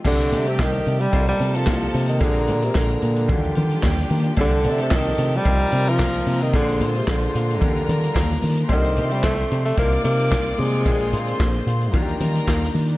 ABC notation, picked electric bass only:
X:1
M:4/4
L:1/8
Q:1/4=111
K:Cdor
V:1 name="Picked electric bass" clef=bass
C,, C, C,, C, C,, C, C,, C, | B,,, B,, B,,, B,, E,, E, E,, E, | C,, C, C,, C, C,, C, C,, C, | B,,, B,, B,,, B,, E,, E, E,, E, |
C,, C, C,, C, C,, C, C,, C, | B,,, B,, B,,, B,, E,, E, E,, E, |]